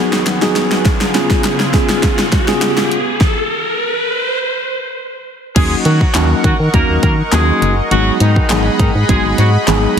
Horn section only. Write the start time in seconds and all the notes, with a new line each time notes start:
5.56 G#3 G#4
5.85 F#3 F#4
6.44 F#3 F#4
6.74 A#3 A#4
7.03 A#3 A#4
7.33 G#3 G#4
7.91 F#3 F#4
8.21 D#3 D#4
8.80 D#3 D#4
9.09 G#3 G#4
9.38 F#3 F#4